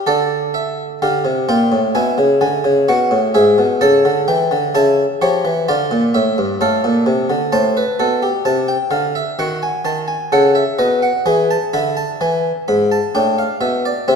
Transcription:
0.07 0.99 D3 medium
0.07 0.98 A4 medium
0.07 0.36 D5 medium
0.54 0.83 E5 medium
1.02 1.25 D3 medium
1.02 1.31 G4 medium
1.02 1.31 F5 medium
1.25 1.48 C3 medium
1.49 1.71 A#2 medium
1.49 1.78 F4 medium
1.49 1.78 G5 medium
1.72 1.95 A2 medium
1.95 2.18 B2 medium
1.95 2.86 E4 medium
1.95 2.24 G#5 medium
2.18 2.41 C#3 medium
2.41 2.64 D3 medium
2.41 2.70 G#5 medium
2.64 2.88 C#3 medium
2.88 3.11 B2 medium
2.88 3.17 F#4 medium
2.88 3.17 F#5 medium
3.11 3.34 A2 medium
3.34 3.58 G#2 medium
3.34 3.64 G#4 medium
3.34 3.63 E5 medium
3.58 3.81 B2 medium
3.81 4.04 C#3 medium
3.81 4.72 A4 medium
3.81 4.10 A5 medium
4.05 4.28 D3 medium
4.28 4.51 E3 medium
4.28 4.57 G5 medium
4.51 4.74 D3 medium
4.75 5.04 C#3 medium
4.75 5.04 E4 medium
4.75 5.04 A5 medium
5.22 5.44 F3 medium
5.22 5.50 G4 medium
5.22 5.50 C#5 medium
5.45 5.67 E3 medium
5.68 5.91 D3 medium
5.68 6.58 F4 medium
5.68 5.97 D5 medium
5.91 6.14 A#2 medium
6.14 6.37 A2 medium
6.14 6.43 E5 medium
6.38 6.60 G2 medium
6.61 6.83 A2 medium
6.61 7.51 A4 medium
6.61 7.51 F5 medium
6.84 7.07 A#2 medium
7.06 7.29 C3 medium
7.30 7.52 D3 medium
7.52 7.82 A2 loud
7.52 7.76 C5 medium
7.52 8.43 A5 medium
7.77 7.99 B4 medium
7.99 8.29 B2 medium
7.99 8.22 A4 medium
8.23 9.35 G4 medium
8.45 8.74 C3 medium
8.45 8.68 A5 medium
8.68 8.91 G5 medium
8.91 9.20 D3 medium
8.91 9.14 F5 medium
9.15 9.38 E5 medium
9.39 9.68 D#3 medium
9.39 10.30 F#4 medium
9.39 9.62 F#5 medium
9.63 9.85 G#5 medium
9.85 10.14 D#3 medium
9.85 10.08 A5 medium
10.08 10.31 G#5 medium
10.32 10.61 C#3 medium
10.32 10.61 A4 medium
10.32 10.55 F#5 medium
10.55 10.78 E5 medium
10.79 11.08 B2 medium
10.79 11.08 B4 medium
10.79 11.02 D#5 medium
11.02 11.25 F#5 medium
11.26 11.55 E3 loud
11.26 11.55 G#4 medium
11.26 11.49 G#5 medium
11.51 11.73 A5 medium
11.73 12.03 D3 medium
11.73 13.10 E4 medium
11.73 11.96 B5 medium
11.97 12.20 A5 medium
12.21 12.50 E3 medium
12.21 12.50 G#5 medium
12.68 12.97 G#2 medium
12.68 12.90 B5 medium
12.92 13.14 A5 medium
13.15 13.44 A2 medium
13.15 14.06 D4 medium
13.15 13.37 G5 medium
13.38 13.61 F5 medium
13.61 13.90 B2 medium
13.61 13.84 E5 medium
13.85 14.08 D5 medium
14.08 14.16 C3 medium
14.08 14.16 C4 medium
14.08 14.16 E5 medium

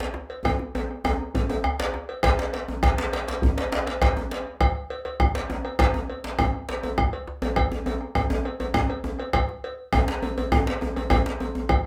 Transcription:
0.00 cowbell soft
0.00 djembe slap medium
0.14 djembe slap medium
0.29 cowbell soft
0.29 djembe slap soft
0.44 bombo rim medium
0.44 bombo low loud
0.44 cowbell medium
0.44 djembe tone loud
0.44 djembe bass medium
0.59 djembe slap medium
0.59 djembe tone medium
0.75 bombo rim soft
0.75 cowbell soft
0.75 djembe tone medium
0.89 bombo rim soft
0.89 djembe slap soft
1.04 bombo rim medium
1.04 cowbell soft
1.04 djembe slap medium
1.04 djembe tone loud
1.04 djembe bass medium
1.35 bombo rim soft
1.35 bombo low loud
1.35 cowbell soft
1.35 djembe slap soft
1.35 djembe tone loud
1.49 bombo rim soft
1.49 cowbell medium
1.49 djembe slap medium
1.49 djembe tone medium
1.64 bombo rim medium
1.64 djembe slap soft
1.64 djembe bass medium
1.79 bombo rim soft
1.79 cowbell medium
1.79 djembe slap soft
1.79 djembe slap loud
1.94 djembe slap medium
2.09 cowbell medium
2.23 bombo rim loud
2.23 bombo low loud
2.23 cowbell medium
2.23 djembe slap loud
2.23 djembe tone medium
2.23 djembe bass medium
2.38 djembe slap medium
2.53 cowbell medium
2.53 djembe slap medium
2.68 djembe tone medium
2.83 bombo rim loud
2.83 bombo low loud
2.83 cowbell medium
2.83 djembe slap medium
2.83 djembe tone medium
2.83 djembe bass medium
2.98 bombo rim soft
2.98 djembe slap loud
3.13 cowbell medium
3.13 djembe slap medium
3.27 cowbell medium
3.27 djembe slap medium
3.42 bombo low loud
3.42 djembe slap soft
3.42 djembe tone medium
3.42 djembe bass medium
3.57 cowbell medium
3.57 djembe slap soft
3.57 djembe slap medium
3.72 djembe slap medium
3.72 djembe slap loud
3.87 bombo rim soft
3.87 cowbell medium
3.87 djembe slap medium
4.01 bombo rim loud
4.01 bombo low loud
4.01 cowbell medium
4.01 djembe slap medium
4.01 djembe tone loud
4.01 djembe bass medium
4.16 djembe slap medium
4.16 djembe tone medium
4.31 cowbell soft
4.31 djembe slap medium
4.60 bombo rim loud
4.60 bombo low loud
4.60 cowbell medium
4.60 djembe slap medium
4.60 djembe tone medium
4.60 djembe bass medium
4.75 bombo rim soft
4.90 cowbell medium
5.05 cowbell medium
5.05 djembe slap medium
5.20 bombo rim loud
5.20 bombo low loud
5.20 djembe slap soft
5.20 djembe tone medium
5.20 djembe bass medium
5.35 cowbell medium
5.35 djembe slap soft
5.35 djembe slap medium
5.50 djembe slap medium
5.50 djembe tone medium
5.65 bombo rim soft
5.65 cowbell medium
5.79 bombo rim loud
5.79 bombo low loud
5.79 cowbell medium
5.79 djembe slap medium
5.79 djembe tone medium
5.79 djembe bass medium
5.94 djembe slap medium
5.94 djembe tone medium
6.10 cowbell medium
6.24 djembe slap medium
6.39 bombo rim loud
6.39 bombo low loud
6.39 cowbell medium
6.39 djembe slap medium
6.39 djembe tone medium
6.39 djembe bass medium
6.54 bombo rim soft
6.69 cowbell medium
6.69 djembe slap medium
6.83 cowbell medium
6.83 djembe slap medium
6.83 djembe tone medium
6.98 bombo rim loud
6.98 bombo low loud
6.98 djembe slap soft
6.98 djembe tone medium
6.98 djembe bass medium
7.13 cowbell medium
7.13 djembe slap soft
7.27 djembe slap medium
7.42 bombo rim soft
7.42 cowbell medium
7.42 djembe tone loud
7.56 bombo rim medium
7.56 bombo low loud
7.56 cowbell medium
7.56 djembe slap soft
7.56 djembe tone medium
7.56 djembe bass medium
7.72 djembe slap medium
7.72 djembe tone medium
7.86 bombo rim soft
7.86 cowbell soft
7.86 djembe slap soft
7.86 djembe tone medium
8.01 bombo rim soft
8.15 bombo rim medium
8.15 bombo low loud
8.15 cowbell soft
8.15 djembe slap medium
8.15 djembe tone medium
8.15 djembe bass medium
8.30 djembe tone loud
8.45 bombo rim soft
8.45 cowbell medium
8.60 cowbell medium
8.60 djembe slap medium
8.60 djembe tone medium
8.74 bombo rim loud
8.74 bombo low loud
8.74 djembe slap soft
8.74 djembe tone loud
8.74 djembe tone medium
8.74 djembe bass medium
8.89 bombo rim soft
8.89 cowbell medium
9.04 djembe slap medium
9.04 djembe tone medium
9.19 bombo rim soft
9.19 cowbell medium
9.33 bombo rim loud
9.33 bombo low loud
9.33 cowbell medium
9.33 djembe tone medium
9.33 djembe bass medium
9.49 djembe slap medium
9.64 cowbell medium
9.93 bombo rim loud
9.93 bombo low loud
9.93 cowbell medium
9.93 djembe slap medium
9.93 djembe tone medium
9.93 djembe tone loud
9.93 djembe bass medium
10.08 djembe slap medium
10.22 cowbell medium
10.22 djembe tone medium
10.37 cowbell medium
10.37 djembe slap medium
10.37 djembe tone medium
10.52 bombo rim loud
10.52 bombo low loud
10.52 djembe slap soft
10.52 djembe tone medium
10.52 djembe tone loud
10.52 djembe bass medium
10.67 cowbell medium
10.67 djembe slap soft
10.67 djembe slap medium
10.81 djembe slap medium
10.81 djembe tone medium
10.96 bombo rim soft
10.96 cowbell medium
10.96 djembe tone medium
11.10 bombo rim loud
11.10 bombo low loud
11.10 cowbell medium
11.10 djembe tone medium
11.10 djembe tone loud
11.10 djembe bass medium
11.26 djembe slap medium
11.40 cowbell soft
11.40 djembe tone medium
11.55 djembe tone medium
11.69 bombo rim loud
11.69 bombo low loud
11.69 cowbell medium
11.69 djembe slap medium
11.69 djembe tone medium
11.69 djembe bass medium

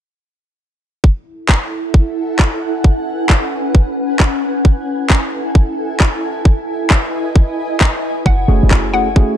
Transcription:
1.04 3.35 E4 medium
1.04 kick loud
1.21 2.62 A4 medium
1.47 7.07 F#5 medium
1.47 kick loud
1.47 clap loud
1.67 9.37 G#5 medium
1.94 kick loud
2.39 kick loud
2.39 clap loud
2.62 5.16 C#4 medium
2.67 5.16 B4 medium
2.84 kick loud
3.29 kick loud
3.29 clap loud
3.75 kick loud
4.20 kick loud
4.20 clap loud
4.42 9.37 E4 medium
4.47 6.23 A4 medium
4.65 kick loud
5.10 kick loud
5.10 clap loud
5.55 kick loud
6.00 kick loud
6.00 clap loud
6.35 8.90 D#5 medium
6.39 8.90 B4 medium
6.45 kick loud
6.90 kick loud
6.90 clap loud
7.36 kick loud
7.81 kick loud
7.81 clap loud
8.26 8.46 F#1 medium
8.26 8.45 F#5 medium
8.26 kick loud
8.48 8.61 F#1 loud
8.48 8.92 A3 medium
8.48 9.37 A3 medium
8.48 8.92 C#4 medium
8.48 8.92 E4 medium
8.48 8.92 F#4 medium
8.48 8.92 G#4 loud
8.63 9.28 F#1 medium
8.71 kick loud
8.71 clap loud
8.77 9.37 F#5 medium
8.93 9.09 A3 medium
8.93 9.09 C#4 medium
8.93 9.09 E4 medium
8.93 9.09 F#4 medium
8.93 9.09 G#4 medium
8.93 9.12 F#5 medium
9.16 9.36 A3 medium
9.16 9.36 C#4 medium
9.16 9.36 E4 medium
9.16 9.36 F#4 medium
9.16 9.36 G#4 loud
9.16 kick loud

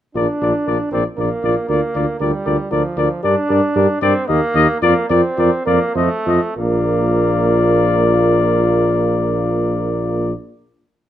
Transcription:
0.15 0.26 A#1 soft
0.15 0.88 D4 medium
0.15 0.27 F4 soft
0.15 0.27 A#4 soft
0.15 0.27 D5 soft
0.41 0.52 A#1 soft
0.41 0.53 F4 soft
0.41 0.53 A#4 soft
0.41 0.53 D5 soft
0.66 0.78 A#1 soft
0.66 0.79 F4 soft
0.66 0.78 A#4 soft
0.66 0.79 D5 soft
0.91 1.04 A#1 soft
0.91 1.04 C4 medium
0.91 1.04 F4 soft
0.91 1.03 A#4 soft
0.91 1.04 D5 soft
1.17 1.29 A#1 soft
1.17 1.68 A#3 medium
1.17 1.30 F4 soft
1.17 1.29 A#4 soft
1.17 1.30 D5 soft
1.43 1.55 A#1 soft
1.43 1.55 F4 soft
1.43 1.55 A#4 soft
1.43 1.55 D5 soft
1.68 1.80 D2 soft
1.68 2.19 A#3 medium
1.68 1.81 F4 soft
1.68 1.80 A#4 soft
1.68 1.81 D5 soft
1.94 2.06 D2 soft
1.94 2.07 F4 soft
1.94 2.05 A#4 soft
1.94 2.06 D5 soft
2.19 2.31 D2 soft
2.19 2.73 G3 medium
2.19 2.32 F4 soft
2.19 2.31 A#4 soft
2.19 2.32 D5 soft
2.45 2.58 D2 soft
2.45 2.57 F4 soft
2.45 2.57 A#4 soft
2.45 2.57 D5 soft
2.71 2.83 D2 soft
2.71 3.24 F3 medium
2.71 2.82 F4 soft
2.71 2.83 A#4 soft
2.71 2.83 D5 soft
2.97 3.09 D2 soft
2.97 3.09 F4 soft
2.97 3.09 A#4 soft
2.97 3.09 D5 soft
3.23 3.36 G2 medium
3.23 4.01 D4 medium
3.23 3.35 G4 soft
3.23 3.35 A#4 soft
3.23 3.35 D5 medium
3.49 3.62 G2 medium
3.49 3.61 G4 soft
3.49 3.60 A#4 soft
3.49 3.61 D5 soft
3.75 3.87 G2 medium
3.75 3.87 G4 soft
3.75 3.87 A#4 medium
3.75 3.87 D5 soft
4.02 4.14 G2 medium
4.02 4.29 C4 medium
4.02 4.14 G4 medium
4.02 4.14 A#4 soft
4.02 4.14 D5 medium
4.28 4.41 D#2 medium
4.28 4.81 A#3 medium
4.28 4.41 G4 medium
4.28 4.40 A#4 medium
4.28 4.40 D#5 soft
4.54 4.66 D#2 medium
4.54 4.67 G4 soft
4.54 4.68 A#4 soft
4.54 4.67 D#5 medium
4.81 4.94 F2 medium
4.81 5.08 A#3 medium
4.81 4.95 F4 medium
4.81 4.95 A#4 medium
4.81 4.94 D5 medium
5.09 5.22 F2 medium
5.09 5.65 C4 medium
5.09 5.22 F4 soft
5.09 5.22 A#4 soft
5.09 5.22 D5 medium
5.37 5.50 F2 medium
5.37 5.50 F4 medium
5.37 5.51 A#4 medium
5.37 5.51 D5 soft
5.66 5.80 F2 medium
5.66 5.95 A#3 medium
5.66 5.80 F4 soft
5.66 5.79 A#4 soft
5.66 5.79 D5 soft
5.95 6.09 F2 soft
5.95 6.56 A3 medium
5.95 6.09 F4 medium
5.95 6.09 C5 soft
5.95 6.10 D#5 soft
6.26 6.40 F2 soft
6.26 6.40 F4 soft
6.26 6.40 C5 soft
6.26 6.41 D#5 soft
6.57 10.32 A#1 soft
6.57 10.32 A#3 medium
6.57 10.32 F4 medium
6.57 10.32 A#4 soft
6.57 10.33 D5 medium

